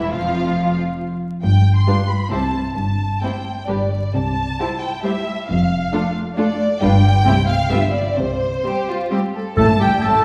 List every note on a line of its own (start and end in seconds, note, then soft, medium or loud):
0.00 0.10 E2 soft
0.00 0.10 E3 medium
0.00 0.10 E4 soft
0.00 0.10 E5 soft
0.10 0.77 F1 soft
0.10 0.77 F2 medium
0.10 0.76 F3 medium
0.10 0.77 F4 medium
0.10 0.76 F5 medium
1.42 1.78 G1 medium
1.42 1.78 G2 medium
1.42 1.73 G5 medium
1.76 2.08 C6 medium
1.87 1.95 G3 soft
1.87 1.95 D4 soft
1.87 1.95 F4 soft
1.87 1.95 B4 soft
2.09 2.31 B5 medium
2.31 2.67 C2 soft
2.31 2.67 C3 soft
2.31 2.39 G3 soft
2.31 2.39 C4 soft
2.31 2.40 E4 soft
2.31 2.40 C5 soft
2.31 2.74 A5 medium
2.75 3.12 G1 soft
2.75 3.12 G2 soft
2.75 3.21 A5 medium
3.21 3.30 G3 soft
3.21 3.30 C4 soft
3.21 3.31 E4 soft
3.21 3.31 C5 soft
3.21 3.67 G5 soft
3.66 4.04 G1 soft
3.66 4.05 G2 soft
3.66 3.75 G3 soft
3.66 3.75 D4 soft
3.66 3.77 G4 soft
3.66 3.77 B4 soft
3.66 4.14 D5 medium
4.14 4.50 C2 medium
4.14 4.51 C3 medium
4.14 4.82 A5 medium
4.60 4.68 G3 soft
4.60 4.68 E4 soft
4.60 4.68 G4 soft
4.60 4.68 C5 soft
4.81 5.04 G5 medium
5.04 5.12 G3 soft
5.04 5.12 E4 soft
5.04 5.12 G4 soft
5.04 5.12 C5 soft
5.04 5.47 E5 medium
5.47 5.83 F1 medium
5.47 5.83 F2 medium
5.47 6.13 F5 medium
5.92 6.00 A3 soft
5.92 6.00 D4 soft
5.92 6.01 F4 soft
5.92 6.01 A4 soft
6.35 6.44 A3 medium
6.35 6.44 D4 medium
6.35 6.45 F4 soft
6.35 6.45 A4 soft
6.35 6.78 D5 medium
6.81 7.17 G1 medium
6.81 7.17 G2 medium
6.81 6.89 G3 medium
6.81 6.90 D4 soft
6.81 6.91 F4 medium
6.81 6.90 B4 medium
6.81 7.48 G5 medium
7.25 7.61 C2 medium
7.25 7.62 C3 medium
7.25 7.33 G3 soft
7.25 7.34 C4 medium
7.25 7.35 E4 medium
7.25 7.35 G4 medium
7.48 7.71 F5 medium
7.70 8.08 G1 medium
7.70 8.08 G2 medium
7.70 7.79 G3 medium
7.70 7.78 B3 medium
7.70 7.81 F4 medium
7.70 7.80 G4 soft
7.70 7.94 E5 medium
7.94 8.17 D5 medium
8.17 8.55 C2 medium
8.17 8.55 C3 medium
8.17 9.11 C5 medium
8.64 8.72 G3 soft
8.64 8.72 C4 soft
8.64 8.87 G4 medium
8.89 9.12 F4 medium
9.10 9.18 G3 soft
9.10 9.19 C4 soft
9.10 9.19 G4 medium
9.34 9.57 A4 medium
9.56 9.66 A1 medium
9.56 10.21 G2 medium
9.56 9.66 A2 medium
9.56 9.78 A3 medium
9.56 9.66 A3 medium
9.56 9.67 A4 medium
9.56 9.78 A5 medium
9.56 9.79 A5 medium
9.79 9.88 G1 soft
9.79 9.89 G2 soft
9.79 9.88 G3 soft
9.79 10.03 G3 medium
9.79 9.90 G4 soft
9.79 10.04 G4 medium
9.79 10.03 G5 medium
10.01 10.25 A1 medium
10.01 10.25 A2 medium
10.01 10.24 A3 medium
10.01 10.25 A3 medium
10.01 10.24 A4 medium
10.01 10.25 A5 medium